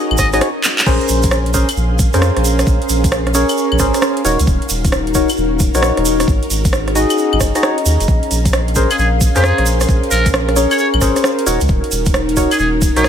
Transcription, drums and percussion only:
0.11 claves
0.18 kick, cross-stick, open hi-hat, shaker
0.33 cross-stick, closed hi-hat, shaker
0.41 cross-stick, closed hi-hat, shaker
0.64 clap, open hi-hat, shaker
0.79 clap, closed hi-hat, shaker
0.86 kick, crash, shaker
1.01 closed hi-hat
1.08 open hi-hat, shaker
1.23 kick, closed hi-hat, shaker
1.31 cross-stick, shaker
1.46 closed hi-hat
1.54 kick, open hi-hat, shaker
1.69 closed hi-hat, claves, shaker
1.77 shaker
1.99 kick, open hi-hat, shaker
2.13 cross-stick, closed hi-hat, shaker
2.22 cross-stick, shaker
2.37 cross-stick, closed hi-hat
2.44 open hi-hat, shaker
2.59 cross-stick, closed hi-hat, shaker
2.67 kick, shaker
2.82 closed hi-hat
2.89 open hi-hat, shaker
3.04 kick, closed hi-hat, shaker
3.12 cross-stick, shaker
3.27 cross-stick, closed hi-hat
3.34 open hi-hat, shaker
3.49 closed hi-hat, claves, shaker
3.57 shaker
3.72 claves
3.79 kick, cross-stick, open hi-hat, shaker
3.94 cross-stick, closed hi-hat, shaker
4.02 cross-stick, shaker
4.17 closed hi-hat
4.25 open hi-hat, shaker
4.39 closed hi-hat, shaker
4.47 kick, shaker
4.62 closed hi-hat
4.69 open hi-hat, shaker
4.85 kick, closed hi-hat, shaker
4.92 cross-stick, shaker
5.07 closed hi-hat
5.14 kick, open hi-hat, shaker
5.29 closed hi-hat, claves, shaker
5.37 shaker
5.59 kick, open hi-hat, shaker
5.75 cross-stick, closed hi-hat, shaker
5.82 cross-stick, shaker
5.97 cross-stick, closed hi-hat
6.05 open hi-hat, shaker
6.20 cross-stick, closed hi-hat, shaker
6.28 kick, shaker
6.43 closed hi-hat
6.50 open hi-hat, shaker
6.65 kick, closed hi-hat, shaker
6.73 cross-stick, shaker
6.88 cross-stick, closed hi-hat
6.95 open hi-hat, shaker
7.10 closed hi-hat, claves, shaker
7.18 shaker
7.33 claves
7.40 kick, cross-stick, open hi-hat, shaker
7.55 cross-stick, closed hi-hat, shaker
7.63 cross-stick, shaker
7.78 closed hi-hat
7.86 open hi-hat, shaker
8.00 closed hi-hat, shaker
8.08 kick, shaker
8.23 closed hi-hat
8.31 open hi-hat, shaker
8.45 kick, closed hi-hat, shaker
8.53 cross-stick, shaker
8.68 closed hi-hat
8.75 kick, open hi-hat, shaker
8.91 closed hi-hat, claves, shaker
8.98 shaker
9.21 kick, open hi-hat, shaker
9.36 cross-stick, closed hi-hat, shaker
9.44 cross-stick, shaker
9.58 cross-stick, closed hi-hat
9.66 open hi-hat, shaker
9.80 cross-stick, closed hi-hat, shaker
9.89 kick, shaker
10.03 closed hi-hat
10.11 open hi-hat, shaker
10.26 kick, closed hi-hat, shaker
10.34 cross-stick, shaker
10.49 cross-stick, closed hi-hat
10.56 open hi-hat, shaker
10.71 closed hi-hat, claves, shaker
10.78 shaker
10.94 claves
11.01 kick, cross-stick, open hi-hat, shaker
11.16 cross-stick, closed hi-hat, shaker
11.24 cross-stick, shaker
11.39 closed hi-hat
11.46 open hi-hat, shaker
11.60 closed hi-hat, shaker
11.68 kick, shaker
11.84 closed hi-hat
11.91 open hi-hat, shaker
12.05 kick, closed hi-hat, shaker
12.14 cross-stick, shaker
12.29 closed hi-hat
12.37 kick, open hi-hat, shaker
12.51 closed hi-hat, claves, shaker
12.59 shaker
12.82 kick, open hi-hat, shaker
12.97 cross-stick, closed hi-hat, shaker
13.04 cross-stick, shaker

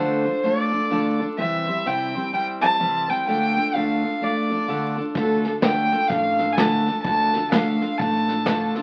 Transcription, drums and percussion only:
5.15 kick, snare
5.44 snare
5.62 kick, snare, hi-hat pedal
5.92 snare
6.10 kick, snare
6.39 snare
6.57 kick, snare, hi-hat pedal
6.86 snare
7.05 kick, snare
7.33 snare
7.52 kick, snare, hi-hat pedal
7.81 snare
7.99 kick, snare
8.28 snare
8.46 kick, snare, hi-hat pedal
8.75 snare

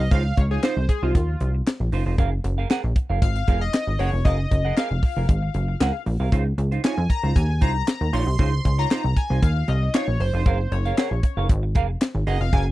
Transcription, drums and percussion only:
0.11 kick, closed hi-hat
0.37 kick, closed hi-hat
0.63 snare, clap, closed hi-hat
0.89 kick, closed hi-hat
1.15 kick, closed hi-hat
1.41 closed hi-hat
1.67 snare, clap, closed hi-hat
1.92 open hi-hat
2.18 kick, closed hi-hat
2.44 closed hi-hat
2.70 snare, clap, closed hi-hat
2.96 kick, closed hi-hat
3.22 kick, closed hi-hat
3.36 closed hi-hat
3.48 kick, closed hi-hat
3.74 snare, clap, closed hi-hat
3.99 open hi-hat
4.25 kick, closed hi-hat
4.51 kick, closed hi-hat
4.77 snare, clap, closed hi-hat
5.03 kick, open hi-hat
5.29 kick, closed hi-hat
5.54 closed hi-hat
5.81 snare, clap, closed hi-hat
6.06 open hi-hat
6.32 kick, closed hi-hat
6.58 closed hi-hat
6.72 closed hi-hat
6.84 snare, clap, closed hi-hat
7.10 kick, closed hi-hat
7.36 kick, closed hi-hat
7.61 kick, closed hi-hat
7.88 snare, clap, closed hi-hat
8.13 open hi-hat
8.39 kick, closed hi-hat
8.65 kick, closed hi-hat
8.79 closed hi-hat
8.91 snare, clap, closed hi-hat
9.16 kick, closed hi-hat
9.43 kick, closed hi-hat
9.68 closed hi-hat
9.94 snare, clap, closed hi-hat
10.20 open hi-hat
10.46 kick, closed hi-hat
10.72 closed hi-hat
10.86 closed hi-hat
10.98 snare, clap, closed hi-hat
11.23 kick, closed hi-hat
11.49 kick, closed hi-hat
11.75 kick, closed hi-hat
12.01 snare, clap, closed hi-hat
12.27 open hi-hat
12.53 kick, closed hi-hat

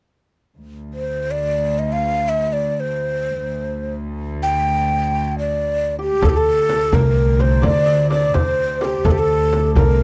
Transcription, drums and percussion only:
6.22 frame drum, tombak dum
6.69 tombak tek, frame drum
6.93 frame drum, tombak dum
7.40 tombak tek, frame drum
7.63 frame drum, tombak dum
8.11 tombak tek, frame drum
8.34 frame drum, tombak dum
8.81 tombak tek, frame drum
9.05 frame drum, tombak dum
9.53 tombak tek, frame drum
9.76 frame drum, tombak dum

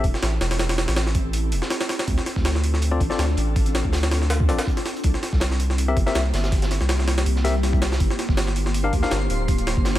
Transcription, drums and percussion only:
0.04 kick, closed hi-hat, open hi-hat
0.14 snare
0.23 snare, closed hi-hat, open hi-hat
0.41 snare, closed hi-hat, open hi-hat
0.51 snare, open hi-hat
0.59 snare, closed hi-hat, open hi-hat
0.69 snare, closed hi-hat, open hi-hat
0.78 snare, closed hi-hat, open hi-hat
0.88 snare, open hi-hat
0.96 snare, closed hi-hat, open hi-hat
1.06 snare
1.15 kick, closed hi-hat, open hi-hat
1.33 closed hi-hat, open hi-hat
1.52 closed hi-hat, open hi-hat
1.62 snare
1.70 snare, closed hi-hat, open hi-hat
1.81 snare, open hi-hat
1.89 snare, closed hi-hat, open hi-hat
1.99 snare, closed hi-hat, open hi-hat
2.07 kick, closed hi-hat, open hi-hat
2.18 snare
2.26 snare, closed hi-hat, open hi-hat
2.36 kick, snare
2.45 snare, closed hi-hat, open hi-hat
2.55 snare
2.64 closed hi-hat, open hi-hat
2.74 snare
2.82 closed hi-hat, open hi-hat
3.00 kick, closed hi-hat, open hi-hat
3.10 snare
3.19 snare, closed hi-hat, open hi-hat
3.37 closed hi-hat, open hi-hat
3.56 kick, closed hi-hat, open hi-hat
3.66 closed hi-hat
3.75 snare, closed hi-hat, open hi-hat
3.85 kick
3.93 snare, closed hi-hat, open hi-hat
4.03 snare, open hi-hat
4.11 snare, closed hi-hat, open hi-hat
4.22 snare
4.30 snare, closed hi-hat, open hi-hat
4.40 kick
4.49 snare, closed hi-hat, open hi-hat
4.59 snare, open hi-hat
4.67 kick, closed hi-hat
4.77 snare, closed hi-hat, open hi-hat
4.86 snare, closed hi-hat, open hi-hat
4.96 closed hi-hat
5.03 kick, closed hi-hat, open hi-hat
5.14 snare
5.23 snare, closed hi-hat, open hi-hat
5.32 kick, snare
5.40 snare, closed hi-hat, open hi-hat
5.51 snare
5.60 closed hi-hat, open hi-hat
5.70 snare
5.78 closed hi-hat, open hi-hat
5.97 kick, closed hi-hat, open hi-hat
6.07 snare
6.15 snare, closed hi-hat, open hi-hat
6.34 snare, closed hi-hat, open hi-hat
6.44 snare, closed hi-hat
6.52 kick, snare, closed hi-hat, open hi-hat
6.62 snare, closed hi-hat
6.71 snare, closed hi-hat, open hi-hat
6.81 snare, closed hi-hat
6.89 snare, closed hi-hat, open hi-hat
6.99 snare
7.08 snare, closed hi-hat, open hi-hat
7.18 snare, open hi-hat
7.26 closed hi-hat, open hi-hat
7.36 snare
7.45 snare, closed hi-hat, open hi-hat
7.63 snare, closed hi-hat, open hi-hat
7.73 kick, closed hi-hat
7.82 snare, closed hi-hat, open hi-hat
7.92 snare, closed hi-hat
8.00 kick, closed hi-hat, open hi-hat
8.10 snare
8.19 snare, closed hi-hat, open hi-hat
8.29 kick, snare
8.37 snare, closed hi-hat, open hi-hat
8.47 snare
8.56 closed hi-hat, open hi-hat
8.66 snare
8.74 closed hi-hat, open hi-hat
8.93 kick, closed hi-hat, open hi-hat
9.03 snare
9.11 snare, closed hi-hat, open hi-hat
9.30 closed hi-hat, open hi-hat
9.48 kick, closed hi-hat, open hi-hat
9.58 closed hi-hat
9.67 snare, closed hi-hat, open hi-hat
9.77 kick
9.85 snare, closed hi-hat, open hi-hat
9.96 snare, open hi-hat

